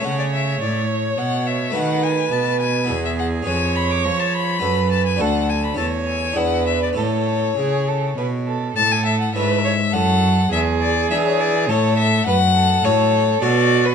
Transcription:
<<
  \new Staff \with { instrumentName = "Violin" } { \time 3/4 \key a \major \tempo 4 = 104 fis''16 d''16 e''8 d''8 cis''8 fis''8 e''8 | fis''8 gis''8 a''8 gis''8. e''16 fis''8 | gis''8 b''16 d'''16 cis'''16 a''16 b''4 a''16 gis''16 | fis''8 gis''16 b''16 a''8 gis''8 fis''8 e''16 d''16 |
cis''2~ cis''8 r8 | a''16 gis''16 e''16 fis''16 e''4 fis''4 | e''8 d''8 e''16 cis''16 d''8 cis''8 e''8 | fis''4 cis''4 d''8. b'16 | }
  \new Staff \with { instrumentName = "Violin" } { \time 3/4 \key a \major cis''2. | b'2 gis'4 | cis''2 b'4 | a'4 cis''4 b'4 |
a'4 gis'8 a'8 b'8 a'8 | a'4 b'8 cis''8 a'4 | gis'2 a'4 | b'8 a'4. fis'4 | }
  \new Staff \with { instrumentName = "Harpsichord" } { \time 3/4 \key a \major <a cis' cis''>2. | <a fis' b'>2 <b e' b'>4 | <cis' gis' b'>2 <cis' fis' a'>4 | <d' fis' a'>4 <cis' e' a'>4 <d' e' gis'>4 |
<cis' e' a'>2. | r4 <cis' e' a'>4 <cis' e' a'>4 | r4 <d' e' gis'>4 <cis' e' a'>4 | r4 <cis' fis' a'>4 <cis' fis' a'>4 | }
  \new Staff \with { instrumentName = "Harpsichord" } { \clef bass \time 3/4 \key a \major cis4 a,4 b,4 | dis4 b,4 e,4 | eis,4 eis4 fis,4 | d,4 e,4 e,4 |
a,4 cis4 b,4 | a,4 gis,4 fis,4 | e,4 e4 a,4 | fis,4 a,4 b,4 | }
  \new Staff \with { instrumentName = "Cello" } { \clef bass \time 3/4 \key a \major cis4 a,4 b,4 | dis4 b,4 e,4 | eis,4 eis4 fis,4 | d,4 e,4 e,4 |
a,4 cis4 b,4 | a,4 gis,4 fis,4 | e,4 e4 a,4 | fis,4 a,4 b,4 | }
>>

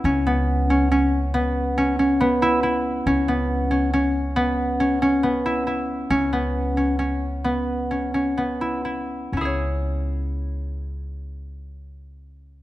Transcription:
<<
  \new Staff \with { instrumentName = "Harp" } { \time 7/4 \key cis \minor \tempo 4 = 137 cis'8 b4 cis'8 cis'4 b4 cis'8 cis'8 b8 e'8 e'4 | cis'8 b4 cis'8 cis'4 b4 cis'8 cis'8 b8 e'8 e'4 | cis'8 b4 cis'8 cis'4 b4 cis'8 cis'8 b8 e'8 e'4 | <cis' e' gis' cis''>1.~ <cis' e' gis' cis''>4 | }
  \new Staff \with { instrumentName = "Upright bass" } { \clef bass \time 7/4 \key cis \minor cis,1.~ cis,4 | cis,1.~ cis,4 | cis,1.~ cis,4 | cis,1.~ cis,4 | }
>>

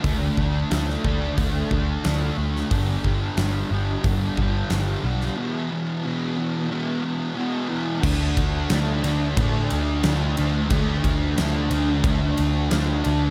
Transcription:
<<
  \new Staff \with { instrumentName = "Distorted electric guitar" } { \clef bass \time 4/4 \key g \lydian \tempo 4 = 90 <d a d'>8 <a d'>8 <d a d'>8 <a d'>8 <d a d'>8 <a d'>8 <d a d'>8 <a d'>8 | <g, d g>8 <d g>8 <g, d g>8 <d g>8 <g, d g>8 <d g>8 <g, d g>8 <d g>8 | <e, b, e>8 <b, e>8 <e, b, e>8 <b, e>8 <e, b, e>8 <b, e>8 <e, b, e>8 <b, e>8 | <d a d'>4 <d a d'>8 <a d'>8 <d a d'>4 <d a d'>8 <a d'>8 |
<d a d'>4 <d a d'>8 <a d'>8 <d a d'>4 <d a d'>8 <a d'>8 | }
  \new Staff \with { instrumentName = "Picked electric bass" } { \clef bass \time 4/4 \key g \lydian d,8 d,8 d,8 d,8 d,8 d,8 d,8 d,8 | g,,8 g,,8 g,,8 g,,8 g,,8 g,,8 g,,8 b,,8 | r1 | d,8 d,8 d,8 d,8 a,8 d,8 d,8 d,8 |
d,8 d,8 d,8 d,8 d,8 d,8 d,8 d,8 | }
  \new DrumStaff \with { instrumentName = "Drums" } \drummode { \time 4/4 <hho bd>8 bd8 <hho sn>16 sn16 bd8 <hho bd>8 bd8 <hho sn>8. sn16 | <hho bd>8 bd8 <hho sn>4 <hho bd>8 bd8 <hho sn>8. sn16 | r4 r4 r4 r4 | <cymc bd>8 <bd cymr>8 <cymr sn>8 <cymr sn>8 <bd cymr>8 cymr8 <cymr sn>8 cymr8 |
<bd cymr>8 <bd cymr>8 <cymr sn>8 cymr8 <bd cymr>8 cymr8 <cymr sn>8 cymr8 | }
>>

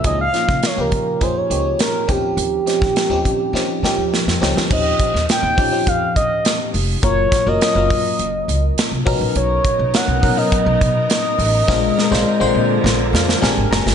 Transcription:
<<
  \new Staff \with { instrumentName = "Analog synth lead" } { \time 4/4 \key ees \mixolydian \tempo 4 = 103 ees''16 f''8. des''16 bes'8. c''16 des''8. bes'8 g'8~ | g'2. r4 | ees''4 g''4 f''8 ees''4 r8 | des''8. ees''2~ ees''8. r8 |
cis''4 fis''8. dis''2~ dis''16~ | dis''2. r4 | }
  \new Staff \with { instrumentName = "FM electric piano" } { \time 4/4 \key ees \mixolydian << { r1 | r1 | r1 | r1 |
r1 | r2 r8 f''8 aes''8 bes''8 | } \\ { <f bes des' ees' aes'>16 r16 <f bes des' ees' f'>8 r16 <f bes des' ees' g'>8 r16 <f bes des' ees' aes'>16 r16 <f bes des' ees' g'>8. r16 <f c' des' ees' g'>8~ | <f c' des' ees' g'>16 r16 <f c' des' ees' g'>8 r16 <f c' des' ees' g'>8 r16 <f c' des' ees' g'>16 r16 <f c' des' ees' g'>8. r16 <f c' des' ees' g'>16 r16 | <f c' des' ees' g'>4 r8 <f c' des' ees' g'>16 <f c' des' ees' g'>4~ <f c' des' ees' g'>16 r4 | <ges bes des' f' bes'>8 r16 <ges bes des' f' bes'>16 r16 <ges bes des' f' bes'>4~ <ges bes des' f' bes'>16 r4 <fis b cis' dis' ais'>8~ |
<fis b cis' dis' ais'>4 r8 <fis b cis' dis' ais'>16 <fis b cis' dis' ais'>4~ <fis b cis' dis' ais'>16 r4 | <aes c' d' f' bes'>8 r16 <aes c' d' f' c''>16 r16 <d aes c' f' c''>4~ <d aes c' f' c''>16 r8 <aes c' d' g' bes'>8. r16 | } >> }
  \new Staff \with { instrumentName = "String section" } { \time 4/4 \key ees \mixolydian r1 | r1 | r1 | r1 |
<b dis' ais'>1 | <d aes>1 | }
  \new Staff \with { instrumentName = "Upright bass" } { \clef bass \time 4/4 \key ees \mixolydian des,8 r16 des16 r16 des,16 des8 f,8 des,8 r8 ees,8 | ees,8 r16 ees16 r16 ees,16 ees8 ees16 r16 ees16 ees,16 r16 f,16 des,16 d,16 | ees,8 r16 ees,16 r16 ees,16 ees8 f,8 ees,8 r8 f,,8 | ges,,8 r16 ges,,16 r16 ges,,16 ges,8 ges,,8 des,8 r16 c,16 b,,16 ais,,16 |
b,,8 r16 b,,16 r16 b,,16 b,8 r16 b,,16 b,8 r8 a,,8 | bes,,8 r16 bes,,16 r16 bes,,16 bes,8 bes,,8 f,8 bes,,16 aes,,16 ges,,16 g,,16 | }
  \new DrumStaff \with { instrumentName = "Drums" } \drummode { \time 4/4 <hh bd>8 <hh sn>16 <bd sn>16 <hh sn>8 <hh bd>8 <hh bd>8 hh8 <hh sn>8 <hh bd>8 | hh8 <hh sn>16 <bd sn>16 <hh sn>8 <hh bd>8 sn8 sn8 sn16 sn16 sn16 sn16 | <cymc bd>8 <hh bd>16 sn16 <hh sn>8 <hho bd>8 <hh bd>8 <hh bd>8 <hh sn>8 hho8 | <hh bd>8 <hh bd sn>8 <hh sn>8 <hho bd>8 hh8 hh8 <hh sn>8 <hho bd>8 |
hh8 <hh bd>8 <hh sn>8 <hho bd>8 <hh bd>8 <hh bd>8 <hh sn>8 hho8 | <bd sn>8 sn16 sn16 r4 sn8 sn16 sn16 sn8 sn16 sn16 | }
>>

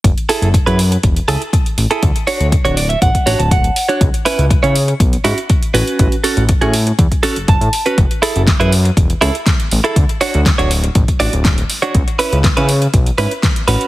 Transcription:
<<
  \new Staff \with { instrumentName = "Clean electric guitar" } { \time 4/4 \key fis \minor \tempo 4 = 121 << { r1 | r4. d''16 e''16 fis''8. a''16 fis''4 | r1 | r2. a''4 |
r1 | r1 | r1 | } \\ { r8 <e' gis' a'>8 r16 <e' gis' b'>16 r4 <e' gis' a'>16 r4 <e' gis' a'>16 | r8 <d' fis' cis''>8 r16 <d' fis' cis''>16 r4 <d' fis' cis''>16 r4 <d' fis' cis''>16 | r8 <cis' e' b'>8 r16 <cis' e' cis''>16 r4 <cis' e' fis'>16 r8. <cis' fis' b'>8~ | <cis' fis' b'>16 r16 <cis' fis' a'>8 r16 <cis' fis' gis'>16 r4 <cis' fis' a'>16 r4 <cis' fis' b'>16 |
r8 <e' gis' a'>8 r16 <e' gis' b'>16 r4 <e' gis' a'>16 r4 <e' gis' a'>16 | r8 <d' fis' cis''>8 r16 <d' fis' cis''>16 r4 <d' fis' d''>16 r4 <d' fis' cis''>16 | r8 <cis' e' b'>8 r16 <cis' e' b'>16 r4 <cis' e' b'>16 r8. <cis' fis' b'>8 | } >> }
  \new Staff \with { instrumentName = "Analog synth bass" } { \clef bass \time 4/4 \key fis \minor fis,,16 r8 fis,,16 r16 fis,8 r16 e,,16 r16 cis,16 r8. a,,16 r16 | d,16 r8 d,16 r16 d,,8 r16 a,,16 r16 a,,16 d,,8 r8. | cis,16 r8 cis,16 r16 cis8 r16 b,,16 r16 gis,16 r8. a,,16 r16 | a,,16 r8 a,,16 r16 a,8 r16 e,16 r8 fis,,16 fis,,16 a,16 r8 |
fis,,16 r8 fis,,16 r16 fis,8 r16 e,,16 r16 cis,16 r8. a,,16 r16 | d,16 r8 d,16 r16 d,,8 r16 a,,16 r16 a,,16 d,,8 r8. | cis,16 r8 cis,16 r16 cis8 r16 b,,16 r16 gis,16 r8. a,,16 r16 | }
  \new DrumStaff \with { instrumentName = "Drums" } \drummode { \time 4/4 <hh bd>16 hh16 hho16 hh16 <hh bd>16 hh16 hho16 hh16 <hh bd>16 hh16 hho16 hh16 <hh bd>16 hh16 hho16 hh16 | <hh bd>16 hh16 hho16 hh16 <hh bd>16 hh16 hho16 hh16 <hh bd>16 <hh bd>16 hho16 hh16 <hh bd>16 hh16 hho16 hh16 | <hh bd>16 hh16 hho16 hh16 <hh bd>16 hh16 hho16 hh16 <hh bd>16 hh16 hho16 hh16 <hh bd>16 hh16 hho16 hh16 | <hh bd>16 hh16 hho16 hh16 <hh bd>16 hh16 hho16 hh16 <hh bd>16 <hh bd>16 hho16 hh16 <hh bd>16 hh16 hho16 hh16 |
<hh bd>16 hh16 hho16 hh16 <hh bd sn>16 hh16 hho16 hh16 <hh bd>16 hh16 hho16 hh16 <hh bd sn>16 hh16 hho16 hh16 | <hh bd>16 hh16 hho16 hh16 <hh bd sn>16 hh16 hho16 hh16 <hh bd>16 <hh bd>16 hho16 hh16 <hh bd sn>16 hh16 hho16 hh16 | <hh bd>16 hh16 hho16 hh16 <hh bd sn>16 hh16 hho16 hh16 <hh bd>16 hh16 hho16 hh16 <hh bd sn>16 hh16 hho16 hh16 | }
>>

